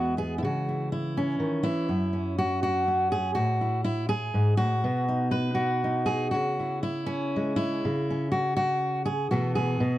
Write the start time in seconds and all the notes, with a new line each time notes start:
Already playing: E2 E3 G#3 B3 F#4
0.17 B3 G#4
0.38 E4
0.43 C#3 F#4
0.69 E4
0.92 E4
1.17 C#4
1.39 D#3
1.63 E3 E4
1.89 F#2
2.13 C#4
2.38 F#4
2.63 F#4
2.88 C#4
3.12 G#4
3.35 A2 F#4
3.61 E4
3.84 E4
4.09 G#4
4.34 G#2
4.57 A2 F#4
4.84 B2
5.08 D#4
5.31 B4
5.55 F#4
5.84 D#4
6.06 G#4
6.31 C#3 F#4
6.60 E4
6.83 E4
7.06 C#4
7.36 G#3
7.56 E4
7.85 C#3
8.10 C#4
8.32 F#4
8.57 F#4
9.05 G#4
9.31 B2 E3 A3 B3 F#4
9.55 G#4
9.80 B2